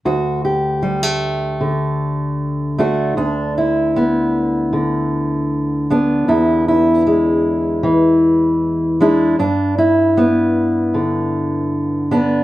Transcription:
\new Staff \with { instrumentName = "Steel-string acoustic guitar" } { \time 4/4 \key d \mixolydian \tempo 4 = 77 << { fis'8 g'8 g16 a2~ a16 <a d' fis'>8 | d'8 e'8 b2~ b8 <b d'>8 | e'8 e'8 gis2~ gis8 <gis d' e'>8 | d'8 e'8 b2~ b8 <b d'>8 | } \\ { d,2 d2 | d,2 d2 | e,2 e2 | g,2 d2 | } >> }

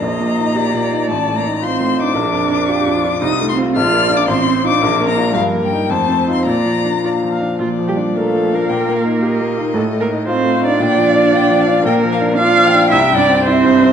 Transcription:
<<
  \new Staff \with { instrumentName = "Violin" } { \time 2/4 \key bes \major \tempo 4 = 113 bes''2 | a''8 bes''8 c'''8. d'''16~ | d'''2 | ees'''8 c'''8 f'''8. d'''16 |
c'''8. d'''8. bes''8 | f''8 g''8 a''8. c'''16 | bes''4. r8 | d''4 f''4 |
g''8 f''8 ees''4~ | ees''4 f''4 | g''8 f''8 g''8 f''8 | \key bes \lydian g''8 f''8 d''8 g''8~ |
g''4 e''4 | }
  \new Staff \with { instrumentName = "Viola" } { \time 2/4 \key bes \major ees''4 d''4~ | d''4 c''4 | bes'4 g'8 f'8~ | f'4 d''4 |
c''4 bes'4 | bes'4 c''4 | d''4 d''8 f''8 | f'8 g'8 a'8. bes'16~ |
bes'2 | a'8 bes'8 c''8. d''16~ | d''2 | \key bes \lydian bes'4 f''4 |
e''8 d''8 c''4 | }
  \new Staff \with { instrumentName = "Grand piano" } { \time 2/4 \key bes \major \tuplet 3/2 { bes,,8 bes,8 ees'8 g'8 bes,8 ees'8 } | \tuplet 3/2 { a,,8 a,8 ees'8 f'8 a,8 ees'8 } | \tuplet 3/2 { bes,,8 f,8 d'8 f'8 f,8 d'8 } | \tuplet 3/2 { c,8 a8 <c' f'>8 bes,,8 bes8 <d' f'>8 } |
\tuplet 3/2 { a,,8 c'8 <ees' f'>8 bes,,8 bes8 <d' f'>8 } | \tuplet 3/2 { g,8 bes8 ees'8 f,8 c'8 <ees' f'>8 } | \tuplet 3/2 { bes,8 f8 d'8 f'8 f8 d'8 } | \tuplet 3/2 { bes,8 f8 d'8 bes'8 f8 d'8 } |
\tuplet 3/2 { bes,8 bes8 ees'8 g'8 bes8 ees'8 } | \tuplet 3/2 { a,8 a8 ees'8 f'8 a8 ees'8 } | \tuplet 3/2 { bes,8 f8 d'8 f'8 f8 d'8 } | \key bes \lydian \tuplet 3/2 { bes,8 f8 d'8 f'8 f8 d'8 } |
\tuplet 3/2 { c,8 g,8 c'8 e'8 g,8 c'8 } | }
  \new Staff \with { instrumentName = "Cello" } { \time 2/4 \key bes \major bes2 | a8 bes8 c'8. d'16~ | d'2 | ees'8 c'8 f'8. d'16 |
c'8. d'8. bes8 | f8 g8 a8. c'16 | bes4. r8 | f8 g8 a8. bes16~ |
bes2 | a8 bes8 c'8. d'16~ | d'2 | \key bes \lydian bes4 f'4 |
e'8 d'8 c'4 | }
>>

